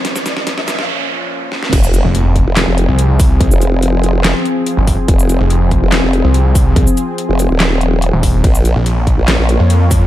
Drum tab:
CC |----------------|x---------------|----------------|----------------|
RD |----------------|----------------|----------------|----------------|
HH |x-x-x-x---------|x-x-x-x-x-x-x-o-|x-x-x-x-x-x-x-o-|x-x-x-x-x-x-x-o-|
SH |-xx---x---------|-xx-----------x-|-xx-------------|-xx-----------x-|
CP |----------------|--------x-------|--------x-------|--------x-------|
SD |oooooooo------oo|--------o-------|--------o-------|--------o-------|
BD |----------------|o-----o-------o-|o-------------o-|o-----o-------o-|

CC |----------------|----------------|
RD |----------------|x---x---x---x---|
HH |x-x-x-x-x-x-x-o-|x-x-x-x-x-x-x-o-|
SH |-xx---x---------|-xx-----------x-|
CP |--------x-------|--------x-------|
SD |--------o-------|--------o-------|
BD |o-------------o-|o-----o-------o-|